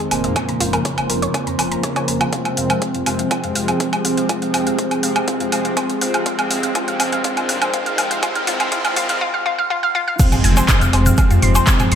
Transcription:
Already playing: F2 G#3 C4 D#4 A#4 C5
0.11 F1 A#2 D#3 G#3 A#3 C4 G#4, open hi-hat, low woodblock
0.24 D#5, closed hi-hat
0.36 C#3 F3 A#3 F4 A#4 C#6, kick, closed hi-hat, mid tom, low woodblock
0.49 A#5, closed hi-hat
0.60 F1 F4, open hi-hat
0.73 A#4, closed hi-hat, low woodblock
0.85 C#5, kick, closed hi-hat
0.98 F1, closed hi-hat, low woodblock
1.10 F1 A#4, mid tom, open hi-hat
1.22 C#5, closed hi-hat
1.34 C#5, kick, closed hi-hat, low woodblock
1.47 F2 A#5, closed hi-hat
1.59 F1 A#4, open hi-hat, low woodblock
1.72 C#3 F3 A#3 A#5, closed hi-hat
1.83 C#5, kick, closed hi-hat, mid tom
1.96 C#5, closed hi-hat, low woodblock
2.08 F1 C#3 F3 A#3 A#4, open hi-hat
2.21 F4, closed hi-hat, low woodblock
2.33 C3 F3 G#3 C4 F4 G4 G#4, kick, closed hi-hat, mid tom, riser
2.45 F5, closed hi-hat, low woodblock
2.57 F1 F5, open hi-hat
2.70 F5, closed hi-hat, low woodblock
2.82 C5, kick, closed hi-hat, mid tom
2.94 F1, closed hi-hat
3.06 F1 C3 C4 F5, mid tom, open hi-hat, low woodblock
3.19 F5, closed hi-hat
3.31 C3 F3 G#3 C4 F4, kick, closed hi-hat, mid tom, low woodblock
3.44 F2 F5, closed hi-hat
3.55 F1 F5, open hi-hat
3.68 F5, closed hi-hat, low woodblock
3.80 C5, kick, closed hi-hat, mid tom
3.93 closed hi-hat, low woodblock
4.05 F1 C3 C4 F5, open hi-hat
4.17 F5, closed hi-hat
4.29 C3 F3 G#3 C4 F4, kick, closed hi-hat, mid tom, low woodblock
4.42 F5, closed hi-hat
4.54 F1 F5, mid tom, open hi-hat, low woodblock
4.67 F5, closed hi-hat
4.79 C5, kick, closed hi-hat, mid tom
4.91 F1, closed hi-hat, low woodblock
5.03 F1 C3 C4 F5, open hi-hat
5.16 F5, closed hi-hat, low woodblock
5.28 C3 F3 G#3 C4 F4, kick, closed hi-hat, mid tom
5.40 F2 F5, closed hi-hat
5.52 F1 F5, open hi-hat, low woodblock
5.65 F5, closed hi-hat
5.77 C5, kick, closed hi-hat, mid tom, low woodblock
5.90 closed hi-hat
6.01 F1 C3 C4 F5, mid tom, open hi-hat
6.14 F5, closed hi-hat, low woodblock
6.26 C3 F3 G#3 C4 D#4 F4 A#4 C5, kick, closed hi-hat, mid tom
6.39 F5, closed hi-hat, low woodblock
6.51 F1 F5, open hi-hat, mid tom
6.63 F5, closed hi-hat
6.75 C3 F3 G#3 C4 F4, kick, closed hi-hat, mid tom, low woodblock
6.88 F1 F5, closed hi-hat
7.00 F1 F5, open hi-hat, mid tom, low woodblock
7.12 F5, closed hi-hat
7.24 C3 F3 G#3 C4 F4, kick, closed hi-hat, mid tom
7.37 F2 F5, closed hi-hat, low woodblock
7.49 F1 F5, mid tom, open hi-hat
7.62 F5, closed hi-hat, low woodblock
7.74 C3 F3 G#3 C4 F4, kick, closed hi-hat, mid tom
7.86 F5, closed hi-hat
7.98 F1 F5, open hi-hat, mid tom, low woodblock
8.11 F5, closed hi-hat
8.23 C3 F3 G#3 A#3 C4 F4 A#4, kick, closed hi-hat, mid tom, low woodblock
8.35 F5, closed hi-hat, mid tom
8.47 F1 C3 F3 G#3 C4 F4, open hi-hat, mid tom
8.60 F5, closed hi-hat, mid tom, low woodblock
8.72 C3 F3 G#3 C4 F4, kick, closed hi-hat, mid tom
8.85 F1 F5, closed hi-hat, mid tom, low woodblock
8.96 F1 C3 F3 G#3 C4 F4, mid tom, open hi-hat
9.09 F5, closed hi-hat, mid tom
9.21 F4
9.34 F5
9.46 F4
9.58 F5
9.70 F4
9.83 F5
9.95 F4
10.08 F5
10.19 C3 F3 G#3 C4 F4 G4 G#4, kick, closed hi-hat, crash, impact, shaker
10.32 closed hi-hat, mid tom, low woodblock, shaker
10.44 F1 G#5, open hi-hat
10.57 C5, closed hi-hat, low woodblock, shaker
10.68 G#5, kick, clap, closed hi-hat, mid tom, shaker
10.81 F1 F5, closed hi-hat, shaker
10.93 F1 C3 C4 C5, open hi-hat, low woodblock
11.06 F5, closed hi-hat, mid tom, shaker
11.17 F5, kick, closed hi-hat, low woodblock, shaker
11.31 F2 F4, closed hi-hat, shaker
11.42 F1 C6, mid tom, open hi-hat
11.55 C5, closed hi-hat, low woodblock, shaker
11.67 G#5, kick, clap, closed hi-hat, shaker
11.80 closed hi-hat, mid tom, low woodblock, shaker
11.92 F1 G#2 F3 G#3 C4 C6, open hi-hat

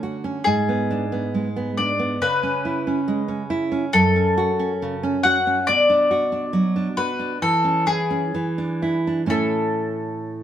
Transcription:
Already playing: D3 C#4 A4
0.03 F#4
0.24 C#4
0.44 G#2 G#4
0.69 B3
0.91 D4
1.12 B3
1.34 G#3
1.56 B3
1.77 D4 D5
1.99 B3
2.21 C#3 B4
2.43 C#4
2.65 E4
2.87 C#4
3.08 G#3
3.28 C#4
3.50 E4
3.72 C#4
3.93 F#2 A4
4.16 C#4
4.38 F#4
4.59 C#4
4.82 C#3
5.03 C#4
5.23 F#4 F#5
5.47 C#4
5.67 B2 D5
5.89 D4
6.11 F#4
6.32 D4
6.53 F#3
6.76 D4
6.97 F#4 B4
7.19 D4
7.42 E3 A4
7.64 C#4
7.87 E4 G#4
8.11 C#4
8.34 E3
8.58 D4
8.82 E4
9.07 D4
9.26 A2 C#4 E4 A4

